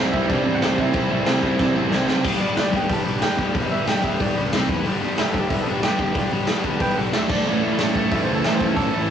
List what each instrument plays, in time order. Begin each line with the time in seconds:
Already playing: distorted electric guitar E3 G3 C4 E4, tine electric piano F#4 F#5
0.00 picked electric bass C2, distorted electric guitar C3
0.12 picked electric bass C2, distorted electric guitar C3 E3 G3 C4 E4, tine electric piano E4 E5, kick
0.28 picked electric bass C2, distorted electric guitar C3 E3 G3 C4 E4, tine electric piano D4 D5, kick, crash
0.43 picked electric bass E2, distorted electric guitar C3 E3 G3 C4 E4
0.55 tine electric piano F#4 F#5
0.61 picked electric bass C2, distorted electric guitar C3 E3 G3 C4 E4, snare, crash
0.78 picked electric bass C2, distorted electric guitar C3 E3 G3 C4 E4, tine electric piano E4 E5, kick
0.93 picked electric bass C2, distorted electric guitar C3 E3 G3 C4 E4, kick, crash
1.11 picked electric bass C2, distorted electric guitar C3 E3 G3 C4 E4
1.26 picked electric bass C2, distorted electric guitar C3 E3 G3 C4 E4, snare, crash
1.43 picked electric bass C2, distorted electric guitar C3 E3 G3 C4 E4, kick
1.59 picked electric bass C2, distorted electric guitar C3 E3 G3 C4 E4, kick, snare
1.76 picked electric bass E2, distorted electric guitar C3 E3 G3 C4 E4
1.92 picked electric bass C2, distorted electric guitar C3 E3 G3 C4 E4, snare
2.08 picked electric bass F#1, distorted electric guitar C3 E3 G3 C4 E4, snare
2.23 picked electric bass G1, overdriven electric guitar G2 D3, distorted electric guitar G3 B3 D4 G4, kick, crash
2.39 picked electric bass G1, overdriven electric guitar G2 D3, distorted electric guitar G3 B3 D4 G4, tine electric piano D5
2.56 picked electric bass G1, overdriven electric guitar G2 D3, distorted electric guitar G3 B3 D4 G4, tine electric piano D5, snare, open hi-hat
2.71 picked electric bass G1, overdriven electric guitar G2 D3, distorted electric guitar G3 B3 D4 G4, kick
2.76 tine electric piano G5
2.88 picked electric bass G1, overdriven electric guitar G2 D3, distorted electric guitar G3 B3 D4 G4, kick, open hi-hat
2.93 tine electric piano A5
3.04 picked electric bass B1, overdriven electric guitar G2 D3, distorted electric guitar G3 B3 D4 G4
3.20 picked electric bass G1, overdriven electric guitar G2 D3, distorted electric guitar G3 B3 D4 G4, tine electric piano G5, snare, open hi-hat
3.37 picked electric bass G1, overdriven electric guitar G2 D3, distorted electric guitar G3 B3 D4 G4, kick
3.53 picked electric bass G1, overdriven electric guitar G2 D3, distorted electric guitar G3 B3 D4 G4, kick, open hi-hat
3.66 overdriven electric guitar D3, tine electric piano D#5
3.70 picked electric bass G1, overdriven electric guitar G2, distorted electric guitar G3 B3 D4 G4, tine electric piano E5
3.86 picked electric bass G1, overdriven electric guitar G2 D3, distorted electric guitar G3 B3 D4 G4, tine electric piano G5, snare, open hi-hat
4.03 picked electric bass G1, overdriven electric guitar G2 D3, distorted electric guitar G3 B3 D4 G4, tine electric piano E5, kick
4.20 picked electric bass G1, overdriven electric guitar G2 D3, distorted electric guitar G3 B3 D4 G4, tine electric piano D5, kick, open hi-hat
4.37 picked electric bass C#2, overdriven electric guitar G2 D3, distorted electric guitar G3 B3 D4 G4
4.53 picked electric bass C2, distorted electric guitar C3 G3 C4 G4, snare, open hi-hat
4.69 picked electric bass E1, overdriven electric guitar E2 B2, distorted electric guitar E3 B3 E4 B4, kick
4.85 picked electric bass G1, distorted electric guitar G2 D3 G3 B3 D4 G4, open hi-hat
5.01 picked electric bass G1, distorted electric guitar G2 D3 G3 B3 D4 G4
5.17 picked electric bass G1, distorted electric guitar G2 D3 G3 B3 D4 G4, tine electric piano E5, snare, open hi-hat
5.30 distorted electric guitar D3 G3 B3 D4 G4, tine electric piano A4, kick
5.34 picked electric bass G1, distorted electric guitar G2
5.40 tine electric piano G4
5.49 picked electric bass G1, distorted electric guitar G2 D3 G3 B3 D4 G4, tine electric piano E5, kick, open hi-hat
5.62 tine electric piano A4
5.67 picked electric bass B1, distorted electric guitar G2 D3 G3 B3 D4 G4
5.74 tine electric piano G4
5.78 tine electric piano F#4
5.83 picked electric bass G1, distorted electric guitar G2 D3 G3 B3 D4 G4, tine electric piano G4, snare, open hi-hat
5.99 picked electric bass G1, distorted electric guitar G2 D3 G3 B3 D4 G4, kick
6.15 picked electric bass G1, distorted electric guitar G2 D3 G3 B3 D4 G4, kick, open hi-hat
6.32 picked electric bass G1, distorted electric guitar G2 D3 G3 B3 D4 G4
6.47 picked electric bass G1, distorted electric guitar G2 D3 G3 B3 D4 G4, snare, open hi-hat
6.64 picked electric bass G1, distorted electric guitar G2 D3 G3 B3 D4 G4, kick
6.76 tine electric piano F#5, kick, open hi-hat
6.81 picked electric bass G1, distorted electric guitar G2 D3 G3 B3 D4 G4, tine electric piano B4 G5
6.97 picked electric bass B1, distorted electric guitar G2 D3 G3 B3 D4 G4, tine electric piano A4 F#5
7.13 picked electric bass D2, distorted electric guitar D3 A3 D4 A4, tine electric piano G4 E5, snare, open hi-hat
7.29 picked electric bass D2, distorted electric guitar D3 A3 D4 A4, tine electric piano D5, kick, crash
7.46 picked electric bass A1, distorted electric guitar A2 E3 A3 C#4 E4 A4
7.63 picked electric bass A1, distorted electric guitar A2 E3 A3 C#4 E4 A4
7.78 picked electric bass A1, distorted electric guitar A2 E3 A3 C#4 E4 A4, snare, open hi-hat
7.94 picked electric bass A1, distorted electric guitar A2 E3 A3 C#4 E4 A4, kick
8.11 picked electric bass A1, distorted electric guitar A2 E3 A3 C#4 E4 A4, tine electric piano E5, kick, open hi-hat
8.23 distorted electric guitar A4, tine electric piano C5
8.28 picked electric bass C#2, distorted electric guitar A2 E3 A3 C#4 E4
8.35 tine electric piano A4
8.43 picked electric bass A1, distorted electric guitar A2 E3 A3 C#4 E4 A4, tine electric piano E5, snare, open hi-hat
8.56 distorted electric guitar C#4 E4 A4, tine electric piano C5
8.60 picked electric bass A1, distorted electric guitar A2 E3 A3, kick
8.65 tine electric piano A4
8.74 picked electric bass A1, distorted electric guitar A2 E3 A3 C#4 E4 A4, tine electric piano C#4 A4, kick, open hi-hat
8.92 picked electric bass A1, distorted electric guitar A2 E3 A3 C#4 E4 A4